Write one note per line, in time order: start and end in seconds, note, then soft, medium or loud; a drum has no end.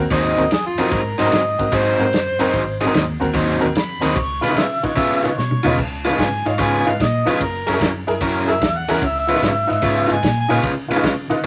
0.10 0.33 D#2 medium
0.10 0.42 G#2 medium
0.10 0.43 F#3 medium
0.10 0.43 C4 loud
0.10 0.43 D#4 medium
0.10 0.19 A#4 medium
0.10 0.21 C5 medium
0.10 0.51 D#5 medium
0.10 kick loud
0.10 ride medium
0.37 0.48 D#2 medium
0.37 0.44 C4 medium
0.37 0.45 F#4 medium
0.37 0.45 A#4 medium
0.37 snare soft
0.37 ride medium
0.51 0.73 F2 medium
0.51 0.65 G#4 medium
0.51 snare loud
0.51 ride medium
0.66 0.94 F4 medium
0.78 0.89 F2 medium
0.78 1.00 G#2 medium
0.78 1.00 F#3 medium
0.78 0.85 C4 medium
0.78 1.00 C4 medium
0.78 1.00 D#4 loud
0.78 0.85 F#4 medium
0.78 0.86 A#4 medium
0.78 snare soft
0.78 ride medium
0.91 1.14 G#2 medium
0.91 1.18 A#4 medium
0.91 kick loud
0.91 snare soft
0.91 ride medium
1.18 1.30 G#2 medium
1.18 1.41 G#2 medium
1.18 1.41 F#3 medium
1.18 1.41 C4 medium
1.18 1.40 D#4 medium
1.18 1.22 F#4 soft
1.18 1.22 A#4 soft
1.18 1.28 A#4 medium
1.18 1.28 C5 medium
1.18 1.76 D#5 medium
1.18 snare soft
1.18 ride medium
1.25 1.32 C4 medium
1.25 1.32 F#4 medium
1.25 1.32 A#4 medium
1.32 snare loud
1.32 ride medium
1.59 1.70 G#2 medium
1.59 1.66 C4 medium
1.59 1.66 F#4 medium
1.59 1.66 A#4 medium
1.59 kick medium
1.59 snare soft
1.59 ride medium
1.72 1.94 G#2 medium
1.72 2.04 G#2 medium
1.72 2.04 F#3 medium
1.72 2.04 C4 medium
1.72 2.04 D#4 medium
1.72 2.92 C5 loud
1.72 kick loud
1.72 ride medium
1.99 2.10 G#2 medium
1.99 2.06 C4 medium
1.99 2.07 F#4 medium
1.99 2.07 A#4 medium
1.99 snare soft
1.99 ride medium
2.13 2.35 F#2 medium
2.13 snare loud
2.13 ride medium
2.39 2.51 F#2 medium
2.39 2.62 G#2 medium
2.39 2.62 F#3 medium
2.39 2.46 C4 loud
2.39 2.62 C4 medium
2.39 2.62 D#4 loud
2.39 2.47 F#4 medium
2.39 2.47 A#4 loud
2.39 snare soft
2.39 ride medium
2.53 2.86 G#1 loud
2.53 kick loud
2.53 ride medium
2.80 3.03 G#2 medium
2.80 3.03 F#3 medium
2.80 3.03 C4 medium
2.80 3.03 D#4 loud
2.80 2.84 F#4 soft
2.80 2.84 G#4 medium
2.80 snare soft
2.80 ride medium
2.86 2.93 C4 medium
2.86 2.94 F#4 medium
2.86 2.94 A#4 medium
2.94 3.16 D#2 loud
2.94 snare loud
2.94 ride medium
3.20 3.32 D#2 medium
3.20 3.27 C4 medium
3.20 3.28 F#4 medium
3.20 3.28 A#4 medium
3.20 kick medium
3.20 snare soft
3.20 ride medium
3.34 3.57 D#2 medium
3.34 3.66 G#2 medium
3.34 3.66 F#3 medium
3.34 3.66 C4 medium
3.34 3.66 D#4 loud
3.34 kick loud
3.34 ride medium
3.60 3.73 D#2 medium
3.60 3.68 C4 medium
3.60 3.68 F#4 medium
3.60 3.68 A#4 loud
3.60 snare soft
3.60 ride medium
3.75 3.97 F2 medium
3.75 4.19 B5 medium
3.75 snare loud
3.75 ride medium
4.00 4.13 D#2 medium
4.00 4.16 G#2 medium
4.00 4.16 F#3 medium
4.00 4.08 C4 medium
4.00 4.16 C4 loud
4.00 4.16 D#4 loud
4.00 4.09 F#4 medium
4.00 4.09 A#4 medium
4.00 ride medium
4.04 snare soft
4.16 4.38 C#2 loud
4.16 4.45 C#6 medium
4.16 kick loud
4.16 ride medium
4.41 4.54 C#3 medium
4.41 4.65 C#3 medium
4.41 4.65 G#3 medium
4.41 4.65 B3 loud
4.41 4.45 F4 soft
4.41 4.64 F4 loud
4.41 4.46 B4 soft
4.41 4.56 B5 medium
4.41 snare soft
4.41 ride medium
4.49 4.56 D#4 medium
4.49 4.56 F4 medium
4.49 4.56 B4 medium
4.56 4.78 C#3 medium
4.56 4.85 E5 medium
4.56 snare loud
4.56 ride medium
4.83 4.94 C#3 medium
4.83 4.90 D#4 medium
4.83 4.90 F4 medium
4.83 4.90 B4 medium
4.83 4.96 C#5 medium
4.83 kick medium
4.83 snare soft
4.83 ride medium
4.96 5.28 C#3 medium
4.96 5.19 C#3 medium
4.96 5.28 G#3 medium
4.96 5.28 B3 medium
4.96 5.28 F4 medium
4.96 5.23 E5 medium
4.96 kick loud
4.96 ride medium
5.23 5.35 C#3 medium
5.23 5.30 D#4 medium
5.23 5.31 F4 medium
5.23 5.31 B4 medium
5.23 5.37 C#5 medium
5.23 snare soft
5.23 ride medium
5.37 5.60 B2 medium
5.37 5.77 C#5 medium
5.37 snare medium
5.51 mid tom medium
5.63 5.79 B2 medium
5.63 5.78 C#3 medium
5.63 5.78 G#3 medium
5.63 5.78 B3 medium
5.63 5.71 D#4 medium
5.63 5.77 F4 loud
5.63 5.72 F4 medium
5.63 5.72 C#5 medium
5.63 floor tom loud
5.78 6.10 C#2 medium
5.78 kick medium
5.78 crash loud
6.05 6.27 C#3 medium
6.05 6.27 G#3 medium
6.05 6.27 B3 medium
6.05 6.08 F4 soft
6.05 6.26 F4 medium
6.05 6.09 B4 medium
6.05 snare soft
6.05 ride medium
6.11 6.18 D#4 medium
6.11 6.18 F4 medium
6.11 6.19 B4 medium
6.18 6.41 G#2 medium
6.18 6.49 G#5 medium
6.18 kick medium
6.18 snare loud
6.18 ride medium
6.45 6.56 G#2 medium
6.45 6.52 D#4 medium
6.45 6.53 F4 medium
6.45 6.53 C#5 medium
6.45 6.63 F5 medium
6.45 snare soft
6.45 ride medium
6.58 6.81 G#2 medium
6.58 6.90 C#3 medium
6.58 6.90 G#3 medium
6.58 6.90 B3 medium
6.58 6.90 F4 loud
6.58 6.90 G#5 medium
6.58 kick medium
6.58 ride medium
6.86 6.97 G#2 medium
6.86 6.93 D#4 medium
6.86 6.93 F4 medium
6.86 6.93 B4 medium
6.86 7.04 F5 medium
6.86 snare soft
6.86 ride medium
7.00 7.22 A#2 medium
7.00 7.27 D#5 medium
7.00 kick medium
7.00 snare loud
7.00 ride medium
7.25 7.37 F2 medium
7.25 7.41 C#3 medium
7.25 7.40 G#3 medium
7.25 7.40 B3 medium
7.25 7.33 D#4 medium
7.25 7.33 F4 medium
7.25 7.40 F4 loud
7.25 7.33 B4 medium
7.25 snare soft
7.25 ride medium
7.29 7.41 C#5 medium
7.40 7.62 F#1 loud
7.40 7.68 A#4 medium
7.40 kick medium
7.40 ride medium
7.66 7.78 F#2 medium
7.66 7.89 F#3 medium
7.66 7.89 C#4 medium
7.66 7.89 E4 medium
7.66 7.70 G#4 soft
7.66 7.70 A#4 soft
7.66 7.89 A#4 medium
7.66 snare soft
7.66 ride medium
7.72 7.80 E4 medium
7.72 7.80 G#4 medium
7.72 7.80 A#4 medium
7.81 8.03 F#2 medium
7.81 kick medium
7.81 snare loud
7.81 ride medium
8.07 8.19 F#2 medium
8.07 8.14 E4 medium
8.07 8.14 G#4 medium
8.07 8.14 A#4 loud
8.07 snare soft
8.07 ride medium
8.21 8.43 F#2 medium
8.21 8.52 F#3 medium
8.21 8.52 C#4 medium
8.21 8.52 E4 loud
8.21 8.53 A#4 loud
8.21 kick medium
8.21 ride medium
8.47 8.59 F#2 medium
8.47 8.54 E4 medium
8.47 8.54 G#4 medium
8.47 8.55 A#4 medium
8.47 8.79 E5 medium
8.47 snare soft
8.47 ride medium
8.61 8.84 E2 medium
8.61 kick medium
8.61 snare loud
8.61 ride medium
8.77 9.02 F#5 medium
8.88 9.00 E2 medium
8.88 9.02 F#3 medium
8.88 9.02 C#4 medium
8.88 8.95 E4 medium
8.88 9.02 E4 loud
8.88 8.95 G#4 medium
8.88 9.02 A#4 loud
8.88 8.95 A#4 medium
8.88 snare soft
8.88 ride medium
9.01 9.34 C#2 loud
9.01 kick medium
9.01 ride medium
9.06 9.17 E5 medium
9.19 9.69 E5 medium
9.27 9.51 C#3 medium
9.27 9.51 G#3 medium
9.27 9.50 B3 loud
9.27 9.31 F4 soft
9.27 9.50 F4 medium
9.27 9.32 B4 medium
9.27 snare soft
9.27 ride medium
9.34 9.41 D#4 medium
9.34 9.42 F4 medium
9.34 9.42 B4 medium
9.42 9.64 G#2 medium
9.42 kick medium
9.42 snare loud
9.42 ride medium
9.67 9.80 G#2 medium
9.67 9.75 D#4 medium
9.67 9.75 F4 medium
9.67 9.75 B4 medium
9.67 ride medium
9.71 10.10 E5 medium
9.71 snare soft
9.82 10.05 G#2 medium
9.82 10.14 C#3 medium
9.82 10.14 G#3 medium
9.82 10.14 B3 medium
9.82 10.14 F4 medium
9.82 kick medium
9.82 snare soft
9.82 ride medium
10.07 10.20 G#2 medium
10.07 10.15 D#4 medium
10.07 10.15 F4 medium
10.07 10.16 B4 medium
10.07 ride medium
10.11 10.37 G#5 medium
10.11 snare soft
10.23 10.45 A#2 medium
10.23 kick medium
10.23 snare loud
10.23 ride medium
10.40 10.60 G#5 loud
10.48 10.61 A#2 medium
10.48 10.72 C#3 medium
10.48 10.72 G#3 medium
10.48 10.72 B3 medium
10.48 10.56 D#4 medium
10.48 10.56 F4 medium
10.48 10.72 F4 loud
10.48 10.57 B4 medium
10.48 snare soft
10.48 ride medium
10.63 10.85 C#3 loud
10.63 kick medium
10.63 snare soft
10.63 ride medium
10.88 11.01 C#3 medium
10.88 11.13 C#3 medium
10.88 11.13 G#3 medium
10.88 11.12 B3 medium
10.88 10.93 F4 medium
10.88 11.12 F4 medium
10.88 10.93 B4 medium
10.88 snare soft
10.88 ride medium
10.96 11.03 D#4 medium
10.96 11.03 F4 medium
10.96 11.04 B4 medium
11.03 11.26 C#3 medium
11.03 kick medium
11.03 snare loud
11.03 ride medium
11.30 11.41 C#3 medium
11.30 11.37 D#4 medium
11.30 11.37 F4 medium
11.30 11.38 B4 medium
11.30 snare soft
11.30 ride medium